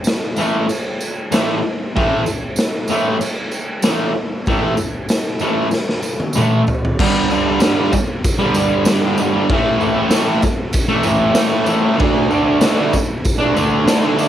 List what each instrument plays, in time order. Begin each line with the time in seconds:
0.04 snare, tambourine, crash
0.36 distorted electric guitar A2 E3 A3, tambourine
0.69 tambourine, crash
1.00 tambourine
1.31 distorted electric guitar A2 E3 A3, snare, tambourine, crash
1.95 distorted electric guitar A2 E3 A3, kick, crash
2.26 tambourine
2.56 snare, tambourine, crash
2.88 distorted electric guitar A2 E3 A3, tambourine
3.21 tambourine, crash
3.51 tambourine
3.82 distorted electric guitar A2 E3 A3, snare, tambourine, crash
4.46 distorted electric guitar A2 E3 A3, kick, tambourine, crash
4.77 tambourine
5.09 snare, tambourine, crash
5.39 distorted electric guitar A2 E3 A3, tambourine
5.71 snare, tambourine
5.89 snare
6.03 tambourine
6.20 high tom
6.33 distorted electric guitar A2 E3, tambourine
6.37 distorted electric guitar A3, mid tom
6.67 floor tom, tambourine
6.85 floor tom
6.99 distorted electric guitar G2 D3 G3, kick, crash
7.30 distorted electric guitar G2 D3 G3, tambourine
7.46 distorted electric guitar G3
7.50 distorted electric guitar D3
7.60 distorted electric guitar G2 D3, snare, tambourine, crash
7.64 distorted electric guitar G3
7.76 distorted electric guitar G3
7.80 distorted electric guitar D3
7.92 muted distorted electric guitar stroke, kick, tambourine
8.24 kick, tambourine, crash
8.39 distorted electric guitar G3
8.43 distorted electric guitar D3
8.54 distorted electric guitar G2 D3 G3, tambourine
8.85 distorted electric guitar G2 D3, snare, tambourine, crash
8.90 distorted electric guitar G3
9.02 distorted electric guitar D3 G3
9.18 distorted electric guitar G2 D3 G3, tambourine
9.33 distorted electric guitar D3 G3
9.50 distorted electric guitar A2 E3 A3, kick, crash
9.80 distorted electric guitar A2 E3 A3, tambourine
9.96 distorted electric guitar E3 A3
10.10 distorted electric guitar A2 E3 A3, snare, tambourine, crash
10.24 distorted electric guitar A3
10.28 distorted electric guitar E3
10.42 muted distorted electric guitar stroke, kick, tambourine
10.73 kick, tambourine, crash
10.88 distorted electric guitar A3
10.92 distorted electric guitar E3
11.02 distorted electric guitar A2 E3, tambourine
11.06 distorted electric guitar A3
11.32 distorted electric guitar A2 E3 A3, snare, tambourine, crash
11.49 distorted electric guitar A3
11.53 distorted electric guitar E3
11.65 distorted electric guitar A2 E3, tambourine
11.69 distorted electric guitar A3
11.81 distorted electric guitar E3 A3
11.96 distorted electric guitar D3 A3 D4, crash
12.00 kick
12.29 distorted electric guitar D3 A3 D4, tambourine
12.44 distorted electric guitar D4
12.48 distorted electric guitar A3
12.61 distorted electric guitar D3 A3 D4, snare, tambourine, crash
12.76 distorted electric guitar D4
12.81 distorted electric guitar A3
12.93 muted distorted electric guitar stroke, kick, tambourine
13.25 kick, tambourine, crash
13.40 distorted electric guitar D4
13.45 distorted electric guitar A3
13.55 distorted electric guitar D3 A3, tambourine
13.59 distorted electric guitar D4
13.86 distorted electric guitar D3 A3 D4, snare, tambourine, crash
14.02 distorted electric guitar A3 D4
14.17 distorted electric guitar D3 A3 D4, tambourine